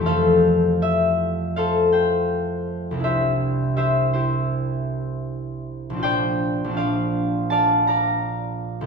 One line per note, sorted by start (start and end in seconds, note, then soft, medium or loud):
0.00 3.00 F2 medium
0.00 3.02 A3 soft
0.00 2.93 C4 soft
0.00 3.03 G4 soft
0.06 1.56 A4 medium
0.06 1.56 C5 medium
0.06 1.55 F5 loud
0.82 2.08 E5 medium
1.56 3.07 A4 medium
1.56 1.92 C5 medium
1.56 3.06 F5 medium
1.92 3.03 C5 medium
1.92 5.82 G5 medium
2.91 6.00 C2 medium
2.91 5.92 C4 soft
2.98 5.95 D4 soft
2.98 4.13 E4 medium
3.04 3.76 G4 medium
3.04 3.76 C5 medium
3.04 3.75 E5 loud
3.77 4.13 G4 medium
3.77 4.12 C5 medium
3.77 6.06 E5 medium
4.13 6.07 E4 medium
4.13 6.07 G4 medium
4.13 6.02 C5 medium
5.90 6.63 A#1 medium
5.90 6.66 C4 medium
5.97 6.69 D4 medium
5.97 6.73 F4 medium
6.03 6.77 C5 medium
6.03 6.77 D5 medium
6.03 7.28 G5 loud
6.64 8.86 A#1 medium
6.64 8.86 C4 soft
6.70 8.86 D4 medium
6.70 8.86 F4 medium
6.77 8.86 C5 medium
6.77 7.51 D5 medium
6.77 7.51 F5 medium
7.50 7.88 D5 medium
7.50 7.87 F5 medium
7.50 8.12 A5 loud
7.87 8.86 D5 medium
7.87 8.86 F5 medium
7.87 8.86 A#5 medium
8.81 8.86 C2 medium